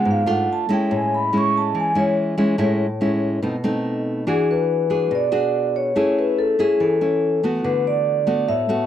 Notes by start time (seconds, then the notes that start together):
Already playing: G#3 B3 F4
0.05 G#2
0.11 F5
0.26 A3 D4 F4 F#5
0.53 A5
0.69 G#3 C#4 E4
0.73 G5
0.91 A2
0.96 G#5
1.14 B5
1.33 G#3 C#4 E4
1.38 C#6
1.57 A5
1.75 E3
1.80 G#5
1.95 G#3 C#4 E4 C#5
2.38 G#3 C#4 E4
2.58 A2 G#3 C#4 E4
3.01 G#3 C#4 E4
3.42 B2 A3 C4 D#4
3.64 A3 C4 D#4
4.27 E3 D4 F#4 G#4
4.51 B4
4.90 D4 F#4 G#4
5.11 B2
5.15 D5
5.32 D4 F#4 G#4
5.76 C#5
5.96 A3 C#4 E4 G#4
6.19 B4
6.39 A4
6.59 C#4 E4 G#4
6.80 E3 A4
7.01 C#4 E4
7.43 A3 B3 F#4
7.64 D3 B4
7.87 D5
8.27 A3 B3 F#4
8.48 A2 E5
8.69 A3 B3 F#4